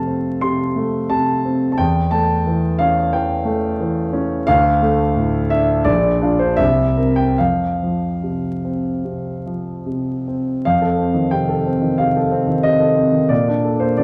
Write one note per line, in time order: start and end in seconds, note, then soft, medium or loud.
0.00 0.39 F2 medium
0.00 0.30 C3 soft
0.00 0.76 A3 soft
0.00 1.81 F5 medium
0.00 0.43 A5 medium
0.07 0.63 C4 soft
0.41 0.97 C3 soft
0.41 1.10 C6 medium
0.76 1.31 A3 soft
1.10 1.65 C3 soft
1.10 1.70 A5 medium
1.45 1.79 C4 soft
1.72 1.79 A5 medium
1.78 3.09 E2 medium
1.78 2.12 G5 medium
2.11 2.66 A3 soft
2.11 2.79 A5 medium
2.46 3.00 E3 medium
2.79 3.33 C#4 medium
2.79 3.12 F5 medium
3.13 3.66 E3 medium
3.13 3.80 G5 medium
3.45 4.00 A3 medium
3.80 4.35 E3 medium
4.13 4.48 C#4 medium
4.47 5.82 D2 medium
4.47 5.50 F5 loud
4.82 5.37 A3 medium
5.16 5.72 A2 medium
5.50 5.87 D4 medium
5.50 5.86 E5 loud
5.84 6.57 A#1 medium
5.84 6.40 D5 loud
6.22 6.56 D4 medium
6.22 6.56 F4 medium
6.39 6.59 C5 medium
6.57 7.35 C2 medium
6.57 7.16 E5 loud
6.97 7.34 C4 soft
6.97 7.34 A#4 medium
7.16 7.37 G5 medium
7.38 9.01 F2 medium
7.38 9.87 F5 medium
7.83 8.49 F3 soft
8.23 8.89 C3 soft
8.64 9.29 C4 soft
9.04 9.70 C3 soft
9.46 10.12 F3 soft
9.86 10.51 C3 soft
10.27 10.65 C4 soft
10.65 11.95 F2 medium
10.65 11.32 F5 medium
10.82 11.08 A4 medium
10.98 11.25 C4 medium
11.14 11.41 D#3 soft
11.31 11.58 C3 soft
11.31 11.98 G5 medium
11.49 11.75 A4 medium
11.66 11.92 C4 soft
11.82 12.09 D#3 soft
11.98 12.26 C3 soft
11.98 12.65 F5 medium
12.16 12.42 A4 medium
12.32 12.58 C4 medium
12.47 12.74 D#3 soft
12.63 12.91 C3 soft
12.63 13.30 D#5 medium
12.80 13.07 A4 soft
12.95 13.23 C4 soft
13.12 13.30 D#3 soft
13.29 14.04 A#2 medium
13.29 13.80 D5 medium
13.48 13.74 D4 soft
13.65 13.91 A4 soft
13.80 14.04 A#3 soft
13.80 13.97 C5 medium
13.97 14.04 D3 soft
13.97 14.04 D5 medium